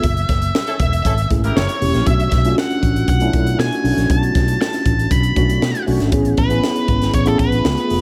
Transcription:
0.00 0.24 F#1 loud
0.00 0.79 E5 loud
0.00 kick loud
0.00 closed hi-hat medium
0.17 closed hi-hat soft
0.29 0.50 F#1 medium
0.29 kick loud
0.29 snare soft
0.29 closed hi-hat medium
0.42 closed hi-hat medium
0.55 snare loud
0.67 0.75 C#4 loud
0.67 0.75 E4 loud
0.67 0.75 A4 loud
0.67 closed hi-hat medium
0.80 1.00 E1 medium
0.80 1.27 E5 medium
0.80 kick loud
0.80 closed hi-hat medium
0.93 closed hi-hat soft
1.05 1.26 G#1 loud
1.05 1.13 C#4 loud
1.05 1.14 E4 loud
1.05 1.13 A4 loud
1.05 kick loud
1.05 closed hi-hat loud
1.18 closed hi-hat medium
1.30 1.51 G#1 medium
1.30 1.56 A3 medium
1.30 1.56 C#4 medium
1.30 1.56 E4 medium
1.30 1.56 G#4 medium
1.30 kick loud
1.30 closed hi-hat medium
1.44 1.80 E4 loud
1.44 1.80 G4 medium
1.44 1.80 A#4 loud
1.44 closed hi-hat medium
1.56 1.66 F#1 loud
1.56 2.07 C#5 medium
1.56 snare loud
1.69 closed hi-hat medium
1.80 1.92 E1 medium
1.80 1.99 A#3 medium
1.80 1.99 C#4 medium
1.80 1.99 E4 medium
1.80 1.99 G4 medium
1.80 open hi-hat medium
1.94 2.05 A#1 loud
1.94 snare soft
1.94 closed hi-hat medium
2.06 2.27 B1 loud
2.06 2.33 A3 medium
2.06 2.34 C#4 medium
2.06 2.34 D4 medium
2.06 2.34 F#4 medium
2.06 2.54 E5 medium
2.06 kick loud
2.06 closed hi-hat medium
2.20 closed hi-hat soft
2.32 2.53 B1 medium
2.32 kick loud
2.32 snare soft
2.32 closed hi-hat medium
2.44 2.98 A3 medium
2.44 2.99 C#4 medium
2.44 2.99 D4 medium
2.44 2.51 F4 medium
2.44 closed hi-hat medium
2.52 3.02 F#4 medium
2.58 3.08 F#5 medium
2.58 snare loud
2.70 closed hi-hat medium
2.83 3.03 A1 loud
2.83 kick medium
2.83 closed hi-hat medium
2.96 closed hi-hat soft
3.08 3.29 B1 medium
3.08 3.56 F#5 medium
3.08 kick medium
3.08 closed hi-hat medium
3.20 3.48 A3 medium
3.20 3.48 C#4 medium
3.20 3.48 D4 medium
3.20 3.48 E4 medium
3.20 closed hi-hat medium
3.33 3.54 B1 medium
3.33 kick loud
3.33 closed hi-hat medium
3.47 closed hi-hat medium
3.58 3.69 B2 loud
3.58 3.76 A3 medium
3.58 3.77 C#4 medium
3.58 3.77 D4 medium
3.58 3.77 F#4 medium
3.58 4.07 G#5 medium
3.58 snare loud
3.72 closed hi-hat medium
3.84 3.94 B1 medium
3.84 4.55 A3 medium
3.84 4.56 C#4 medium
3.84 4.56 D4 medium
3.84 4.56 F#4 medium
3.84 open hi-hat medium
3.97 4.07 A#1 medium
3.97 snare soft
3.97 closed hi-hat medium
4.10 4.30 B1 loud
4.10 4.60 A5 loud
4.10 kick loud
4.10 closed hi-hat loud
4.23 closed hi-hat soft
4.35 4.56 B1 medium
4.35 kick loud
4.35 snare soft
4.35 closed hi-hat medium
4.48 closed hi-hat medium
4.61 5.13 A5 loud
4.61 snare loud
4.73 snare soft
4.73 closed hi-hat medium
4.86 5.06 A1 medium
4.86 kick loud
4.86 closed hi-hat medium
4.99 closed hi-hat soft
5.11 5.32 B1 loud
5.11 5.83 B5 loud
5.11 kick loud
5.11 closed hi-hat loud
5.23 closed hi-hat soft
5.36 5.57 B1 medium
5.36 5.72 A3 medium
5.36 5.72 C#4 medium
5.36 5.72 D4 medium
5.36 5.72 F#4 medium
5.36 kick loud
5.36 closed hi-hat medium
5.49 closed hi-hat medium
5.62 5.72 B2 loud
5.62 snare loud
5.75 closed hi-hat medium
5.86 5.98 B1 loud
5.86 6.04 A3 medium
5.86 6.05 C#4 medium
5.86 6.05 D4 medium
5.86 6.05 F#4 loud
5.86 open hi-hat medium
6.00 6.10 G#1 medium
6.00 snare soft
6.00 closed hi-hat soft
6.12 6.33 A1 loud
6.12 6.39 B3 medium
6.12 6.39 C#4 medium
6.12 6.39 E4 medium
6.12 6.39 G#4 medium
6.12 kick loud
6.12 closed hi-hat medium
6.25 closed hi-hat soft
6.37 6.58 A1 medium
6.37 7.10 B4 loud
6.37 kick loud
6.37 closed hi-hat medium
6.50 7.04 B3 medium
6.50 7.04 C#4 medium
6.50 7.04 E4 medium
6.50 7.04 G#4 medium
6.50 closed hi-hat soft
6.64 snare loud
6.76 closed hi-hat medium
6.88 7.09 G#1 medium
6.88 kick loud
6.88 closed hi-hat medium
7.02 snare soft
7.02 closed hi-hat soft
7.13 7.34 A1 loud
7.13 7.27 C#5 loud
7.13 kick loud
7.13 closed hi-hat medium
7.26 7.53 B3 medium
7.26 7.53 C#4 medium
7.26 7.53 E4 medium
7.26 7.54 G#4 medium
7.26 7.39 A4 medium
7.26 closed hi-hat soft
7.39 7.60 A1 medium
7.39 8.01 B4 medium
7.39 kick loud
7.39 closed hi-hat medium
7.52 closed hi-hat medium
7.64 7.75 C#2 loud
7.64 7.82 A3 medium
7.64 7.82 B3 medium
7.64 7.83 F4 medium
7.64 7.83 G#4 medium
7.64 snare loud
7.77 closed hi-hat medium
7.89 8.01 F1 medium
7.89 8.01 A3 medium
7.89 8.01 B3 medium
7.89 8.01 F4 medium
7.89 8.01 G#4 medium
7.89 open hi-hat medium

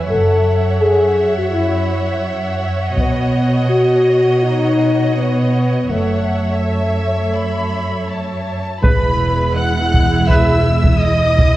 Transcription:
0.09 0.78 F#1 soft
0.09 2.93 F#2 soft
0.09 0.80 A4 medium
0.09 5.84 C#5 soft
0.09 2.93 E5 soft
0.09 5.84 F#5 soft
0.81 1.36 G#4 medium
1.37 1.54 F#4 medium
1.52 2.25 E4 medium
2.97 3.66 B1 soft
2.97 5.85 B2 soft
2.97 3.66 B3 medium
2.97 5.89 D#5 soft
2.97 taiko soft
3.70 4.41 F#4 medium
4.44 5.16 D#4 medium
5.16 5.88 B3 medium
5.88 6.59 F#1 soft
5.88 8.59 F#2 soft
5.88 8.47 A3 medium
5.88 8.59 C#5 soft
5.88 8.62 E5 soft
5.88 6.54 F#5 soft
6.61 7.31 E5 soft
7.35 8.09 B5 medium
8.10 8.84 A5 soft
8.81 11.57 E1 soft
8.81 11.57 E2 soft
8.81 9.09 E3 soft
8.81 11.57 G#3 soft
8.81 11.57 E4 soft
8.81 9.09 G#4 soft
8.81 9.52 B4 medium
8.81 9.58 B4 medium
8.81 9.09 B4 soft
8.81 9.53 B5 medium
8.81 taiko medium
8.81 impact medium
9.55 10.28 F#5 medium
9.55 10.27 F#6 medium
9.94 taiko medium
10.27 10.53 E3 soft
10.27 10.54 G#4 soft
10.27 10.54 B4 soft
10.27 11.00 E5 soft
10.27 11.01 E5 soft
10.27 11.01 E6 medium
10.27 taiko medium
10.84 taiko medium
10.99 11.57 D#5 medium
10.99 11.57 D#6 medium
11.38 taiko medium

